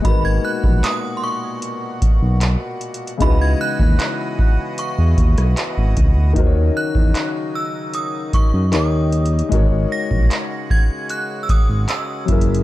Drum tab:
HH |x-----------x-----------x-----x-----x-----x-x-x-|x-----------x-----------x-----x--x--x-----x-----|x-----------x-----------x-----x-----x-----x-x-x-|x-----------x-----------x-----x-----x-----x-x-x-|
CP |------------x-----------------------x-----------|------------x-----------------------x-----------|------------x-----------------------x-----------|------------x-----------------------x-----------|
SD |------------------------------------------------|---------------------------------r--------------|------------------------------------------------|------------------------------------------------|
BD |o--------o--------------------o-----------------|o--------o--------o-----------o-----------o-----|o--------o--------------------o-----------------|o--------o--------o-----------o-----------o-----|